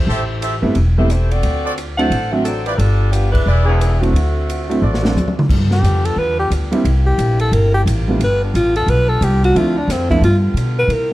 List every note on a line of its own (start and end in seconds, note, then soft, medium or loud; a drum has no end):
0.00 0.43 A3 medium
0.00 0.43 E4 medium
0.00 0.43 G4 medium
0.00 0.43 C5 medium
0.07 0.59 A1 medium
0.07 0.23 G4 medium
0.07 0.23 A4 medium
0.07 0.23 C5 medium
0.07 0.23 E5 loud
0.41 0.56 G4 medium
0.41 0.56 A4 medium
0.41 0.56 C5 medium
0.41 0.56 E5 medium
0.41 hi-hat pedal medium
0.41 ride medium
0.62 0.75 G1 medium
0.62 0.74 G3 medium
0.62 0.74 A3 medium
0.62 0.74 B3 medium
0.62 0.74 C4 medium
0.62 0.74 E4 medium
0.75 1.40 E1 medium
0.75 ride medium
0.98 1.09 G3 medium
0.98 1.09 A3 soft
0.98 1.09 B3 soft
0.98 1.09 C4 medium
0.98 1.09 E4 medium
0.98 1.10 G4 medium
0.98 1.09 A4 medium
0.98 1.09 E5 medium
1.10 1.31 A3 medium
1.10 1.32 E4 medium
1.10 1.31 G4 medium
1.10 1.32 C5 medium
1.10 hi-hat pedal medium
1.10 ride medium
1.31 1.78 C4 medium
1.31 1.78 F#4 medium
1.31 1.78 A4 medium
1.31 1.78 D5 loud
1.31 ride soft
1.43 2.08 D2 medium
1.43 ride medium
1.65 1.73 F#4 medium
1.65 1.74 A4 medium
1.65 1.74 C5 medium
1.65 1.73 D5 medium
1.78 hi-hat pedal medium
1.78 ride medium
1.98 2.10 F#3 medium
1.98 2.10 A3 medium
1.98 2.10 C4 medium
1.98 2.30 D4 medium
1.98 2.10 D4 medium
1.98 2.10 E4 medium
1.98 2.30 A4 loud
1.98 2.30 C5 medium
1.98 2.30 F#5 loud
1.98 ride soft
2.10 2.75 A1 medium
2.10 ride medium
2.32 2.44 F#3 medium
2.32 2.44 A3 medium
2.32 2.44 C4 medium
2.32 2.45 C4 medium
2.32 2.44 D4 medium
2.32 2.45 F#4 medium
2.32 2.44 F#4 medium
2.32 2.44 A4 medium
2.32 2.45 E5 medium
2.45 2.65 F#3 medium
2.45 2.65 C4 medium
2.45 2.65 D4 medium
2.45 2.65 A4 medium
2.45 hi-hat pedal medium
2.45 ride medium
2.66 2.77 G3 medium
2.66 2.79 C4 medium
2.66 2.79 E4 medium
2.66 2.75 F4 medium
2.66 2.75 G4 medium
2.66 2.75 B4 medium
2.66 2.79 B4 medium
2.66 2.75 D5 medium
2.66 ride soft
2.78 3.43 G1 medium
2.78 3.13 G3 medium
2.78 3.11 D4 medium
2.78 3.13 F4 loud
2.78 3.13 A4 loud
2.78 ride medium
3.12 3.34 F3 medium
3.12 3.34 B3 medium
3.12 3.30 D4 medium
3.12 3.34 G4 medium
3.12 hi-hat pedal medium
3.12 ride medium
3.31 3.64 G#3 medium
3.31 3.64 D4 medium
3.31 3.64 E4 medium
3.31 3.64 B4 loud
3.31 kick medium
3.31 crash medium
3.46 4.11 E1 medium
3.46 3.98 E4 medium
3.46 3.98 G#4 medium
3.46 3.98 B4 medium
3.46 3.98 D5 medium
3.66 3.99 E3 medium
3.66 3.99 B3 medium
3.66 3.98 D4 medium
3.66 3.98 G#4 medium
3.81 hi-hat pedal medium
3.81 ride medium
4.00 5.15 D3 medium
4.00 4.13 F#3 medium
4.00 5.15 A3 medium
4.00 4.13 A3 medium
4.00 5.15 C4 medium
4.00 4.13 C4 medium
4.00 4.13 D4 soft
4.00 4.13 E4 medium
4.00 5.15 F#4 medium
4.00 ride soft
4.13 4.78 D2 medium
4.13 ride medium
4.50 hi-hat pedal soft
4.50 ride medium
4.69 4.81 F#3 medium
4.69 4.81 A3 medium
4.69 4.81 C4 medium
4.69 4.81 D4 medium
4.69 4.81 E4 medium
4.69 ride soft
4.81 5.13 A1 medium
4.81 5.32 F#4 medium
4.81 5.33 A4 medium
4.81 5.33 C5 medium
4.81 5.32 D5 medium
4.94 snare soft
5.02 5.14 F#3 medium
5.02 5.14 A3 soft
5.02 5.15 C4 medium
5.02 5.15 D4 medium
5.02 5.15 F#4 medium
5.02 snare medium
5.15 5.47 D2 medium
5.15 hi-hat pedal soft
5.15 high tom medium
5.28 high tom medium
5.39 mid tom medium
5.47 5.82 G2 medium
5.47 6.82 D3 medium
5.47 9.50 G3 medium
5.47 6.83 B3 medium
5.47 6.83 F4 medium
5.47 kick medium
5.47 crash medium
5.71 6.07 G4 medium
5.71 snare soft
5.83 6.15 F2 medium
5.83 hi-hat pedal medium
5.83 ride medium
6.05 6.20 A4 medium
6.05 ride medium
6.16 6.49 E2 medium
6.16 6.39 B4 medium
6.39 6.51 G4 medium
6.50 6.83 D2 medium
6.50 hi-hat pedal medium
6.50 ride medium
6.71 6.83 G3 medium
6.71 6.83 A#3 medium
6.71 6.83 C4 medium
6.71 6.83 D4 medium
6.71 6.84 E4 medium
6.71 ride soft
6.84 7.17 C2 medium
6.84 8.20 C3 medium
6.84 8.20 A#3 medium
6.84 8.19 E4 medium
6.84 ride medium
7.06 7.38 G4 medium
7.18 7.51 A#1 medium
7.18 hi-hat pedal medium
7.18 ride medium
7.39 7.55 A4 medium
7.39 ride soft
7.51 7.85 G1 medium
7.51 7.74 A#4 medium
7.51 ride medium
7.74 7.82 G4 medium
7.86 8.19 A1 medium
7.86 hi-hat pedal medium
7.86 ride medium
8.08 8.19 G3 medium
8.08 8.19 A3 soft
8.08 8.19 B3 soft
8.08 8.20 D4 soft
8.08 8.19 F4 medium
8.19 8.52 G1 medium
8.19 10.89 D3 medium
8.19 9.55 B3 medium
8.19 9.54 F4 medium
8.19 ride medium
8.24 8.42 B4 medium
8.44 8.57 D4 soft
8.54 8.86 A1 medium
8.54 8.76 F4 medium
8.54 hi-hat pedal medium
8.54 ride medium
8.76 8.91 A4 medium
8.76 ride soft
8.87 9.20 B1 medium
8.87 9.11 B4 loud
8.87 ride medium
9.09 9.25 A4 medium
9.21 9.53 C2 loud
9.21 9.44 G4 medium
9.21 hi-hat pedal medium
9.21 ride medium
9.44 9.59 F#4 loud
9.44 ride soft
9.54 9.87 D2 medium
9.54 9.74 F3 medium
9.54 10.22 A3 medium
9.54 9.74 A3 medium
9.54 10.22 C4 medium
9.54 9.75 C4 medium
9.54 9.75 D4 medium
9.54 9.75 E4 medium
9.54 10.20 F4 medium
9.54 ride medium
9.58 9.79 F4 medium
9.78 9.93 D4 medium
9.88 10.21 F2 medium
9.88 10.10 C4 medium
9.88 snare soft
9.88 hi-hat pedal medium
9.88 ride medium
10.10 10.22 F3 medium
10.10 10.22 A3 medium
10.10 10.22 B3 medium
10.10 10.22 D4 medium
10.10 10.22 E4 medium
10.10 10.22 F4 medium
10.10 kick medium
10.10 ride soft
10.21 10.53 G2 medium
10.21 10.87 G3 medium
10.21 10.89 B3 medium
10.21 10.89 F4 medium
10.21 10.37 F4 medium
10.21 ride medium
10.54 10.87 B2 medium
10.54 hi-hat pedal medium
10.54 ride medium
10.79 10.94 B4 loud
10.87 11.13 C3 medium
10.87 11.13 G3 medium
10.87 11.13 A#3 medium
10.87 11.13 E4 medium
10.87 ride medium
10.93 11.13 A#4 medium